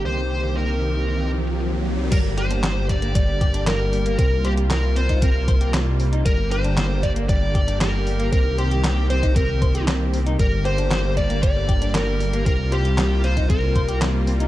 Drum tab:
CC |----------------|x---------------|----------------|----------------|
HH |x-xxx-xxx-xxx-xx|x-xxx-xxx-xxx-ox|x-xxx-xxx-xxx-ox|x-xxx-xxx-xxx-ox|
CP |----------------|----x-------x---|----x-------x---|----x-------x---|
SD |----------------|----o-------o---|----o-------o---|----o-------o---|
BD |----------------|o-----o-o-o-----|o------oo-o-----|o-----o-o-o-----|

CC |----------------|----------------|----------------|
HH |x-xxx-xxx-xxx-ox|x-xxx-xxx-xxx-ox|x-xxx-xxx-xxx-ox|
CP |----x-------x---|----x-------x---|----x-------x---|
SD |----o-------o---|----o-------o---|----o-------o---|
BD |o------oo-o-----|o-----o-o-o-----|o------oo-o-----|